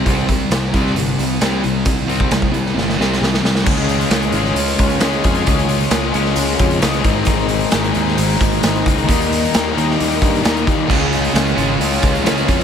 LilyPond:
<<
  \new Staff \with { instrumentName = "String section" } { \time 4/4 \key des \lydian \tempo 4 = 133 << { r1 | r1 | <des'' aes''>1~ | <des'' aes''>2.~ <des'' aes''>8 <c'' aes''>8~ |
<c'' aes''>1 | <bes' g''>1 | <des'' aes''>1 | } \\ { r1 | r1 | f'1~ | f'2.~ f'8 ees'8~ |
ees'1~ | ees'1 | f'1 | } >> }
  \new Staff \with { instrumentName = "Distorted electric guitar" } { \clef bass \time 4/4 \key des \lydian <c g c'>8 <c g>8 <c g>8 <c g c'>8 <c g>8 <c g>8 <c g c'>8 <c g>8 | <c g>8 <c g c'>8 <c g>8 <c g>8 <c g>8 <c g c'>8 <c g>8 <c g>8 | <des aes des' f' aes'>4 <aes des' f' aes'>8 <des' f' aes'>4. <des aes des' f' aes'>8 <des' f' aes'>8 | <des aes des' f' aes'>4 <aes des' f' aes'>8 <des' f' aes'>4. <des aes des' f' aes'>8 <aes, ees aes c' ees'>8 |
<aes, ees aes c' ees'>4 <ees aes c' ees'>8 <aes c' ees'>4. <aes, ees aes c' ees'>8 <aes c' ees'>8 | <ees g bes ees'>4 <ees g bes ees'>8 <g bes ees'>4. <ees g bes ees'>8 <g bes ees'>8 | <des aes des' f'>4 <des aes des' f'>8 <aes des' f'>4. <des aes des' f'>8 <aes des' f'>8 | }
  \new Staff \with { instrumentName = "Distorted electric guitar" } { \clef bass \time 4/4 \key des \lydian r1 | r1 | <des aes des'>4. <des aes des'>4. <des aes des'>4 | <des aes des'>4. <des aes des'>4. <des aes des'>8 <aes, ees aes>8~ |
<aes, ees aes>4 <aes, ees aes>4. <aes, ees aes>4 r8 | <ees bes ees'>4. <ees bes ees'>4. <ees bes ees'>4 | <des aes des'>4. <des aes des'>4. <des aes des'>4 | }
  \new Staff \with { instrumentName = "Distorted electric guitar" } { \clef bass \time 4/4 \key des \lydian <c g c'>8 <c g>8 <c g>8 <c g c'>8 <c g>8 <c g>8 <c g c'>8 <c g>8 | <c g>8 <c g c'>8 <c g>8 <c g>8 <c g>8 <c g c'>8 <c g>8 <c g>8 | r1 | r1 |
r1 | r1 | <des aes des' f'>8 <aes des' f'>8 <des aes des' f'>8 <aes des' f'>4. <des aes des' f'>8 <aes des' f'>8 | }
  \new Staff \with { instrumentName = "Picked electric bass" } { \clef bass \time 4/4 \key des \lydian c,4 c,8 c,8 g,,8 c,8 c,8 c,8 | c,4 c,8 c,8 g,,8 c,8 c,8 c,8 | des,4 des,8 aes,,8 des,8 des,8 des,8 f,8 | des,4 des,8 des,8 des,8 f,8 des,8 aes,,8 |
aes,,4 aes,,8 ees,8 aes,,8 aes,,8 aes,,8 des,8 | ees,4 ees,8 ees,8 ees,8 g,8 ees,8 ees,8 | des,4 des,8 aes,,8 des,8 des,8 des,8 f,8 | }
  \new DrumStaff \with { instrumentName = "Drums" } \drummode { \time 4/4 <hh bd>8 <hh bd>8 <hh sn>8 <hh bd>16 sn16 hh8 hh8 <hh sn>8 hh8 | <hh bd>8 hh16 bd16 <hh sn>16 bd16 hh16 sn16 sn16 sn16 sn16 sn16 sn16 sn16 sn16 sn16 | <cymc bd>8 hh16 hh16 <hh sn>16 hh16 hh16 sn16 hh16 hh16 <hh bd>16 hh16 <hh sn>16 hh16 <hh bd>16 hh16 | <hh bd>16 hh16 hh16 hh16 <hh sn>8 hh16 sn16 hh16 hh16 <hh bd>16 hh16 <hh sn>16 hh16 <hh bd>8 |
<hh bd>8 hh16 hh16 <hh sn>16 hh16 hh16 sn16 hh16 hh16 <hh bd>16 hh16 <hh sn>16 hh16 <hh bd>16 hh16 | <hh bd>16 hh16 hh16 hh16 <hh sn>8 hh16 sn16 hh16 hh16 <hh bd>16 hh16 <hh sn>16 hh16 <hh bd>8 | <cymc bd>8 hh16 hh16 <hh sn>16 hh16 hh8 hh16 hh16 <hh bd>16 hh16 <hh sn>16 hh16 <hh bd>16 hh16 | }
>>